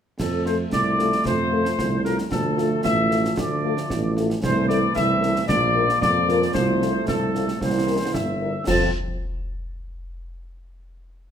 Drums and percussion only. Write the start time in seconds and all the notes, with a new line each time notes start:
0.20 concert bass drum, snare, crash
0.46 snare
0.73 concert bass drum, snare
0.99 snare
1.12 snare
1.25 concert bass drum, snare
1.65 snare
1.79 concert bass drum, snare
2.05 snare
2.18 snare
2.32 concert bass drum, snare
2.58 snare
2.85 concert bass drum, snare
3.11 snare
3.25 snare
3.37 concert bass drum, snare
3.77 snare
3.90 concert bass drum, snare
4.17 snare
4.30 snare
4.44 concert bass drum, snare, crash
4.70 snare
4.96 concert bass drum, snare
5.23 snare
5.36 snare
5.49 concert bass drum, snare
5.89 snare
6.02 concert bass drum, snare
6.29 snare
6.42 snare
6.55 concert bass drum, snare
6.82 snare
7.08 concert bass drum, snare
7.35 snare
7.48 snare
7.61 concert bass drum, snare
8.14 concert bass drum, snare
8.67 concert bass drum, snare, crash